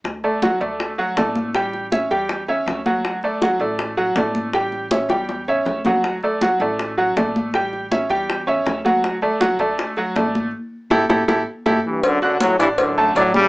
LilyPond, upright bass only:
\new Staff \with { instrumentName = "Upright bass" } { \clef bass \time 4/4 \key d \major \tempo 4 = 160 d,4. d,4. a,,4~ | a,,4. e,4. d,4~ | d,4. a,,4. a,,4~ | a,,4. e,4. d,4~ |
d,4. a,,4. a,,4~ | a,,4. e,4. d,4~ | d,4. d,4. a,,4 | r4 a,,8 a,,8 a,,8 r8 a,,8 r8 |
r4. a,,4. a,,4 | }